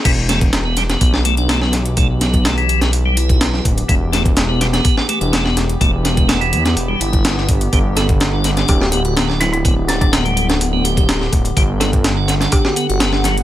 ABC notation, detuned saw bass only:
X:1
M:4/4
L:1/16
Q:1/4=125
K:Em
V:1 name="Detuned saw bass" clef=bass
E,,,8 B,,,8- | B,,,12- B,,,2 D,,,2 | E,,,8 z3 E,,,4- E,,, | E,,,6 E,,2 E,,,2 G,,,6 |
G,,,8 D,,,8- | D,,,12- D,,,2 D,,,2 | G,,,8 z3 G,,,4- G,,, |]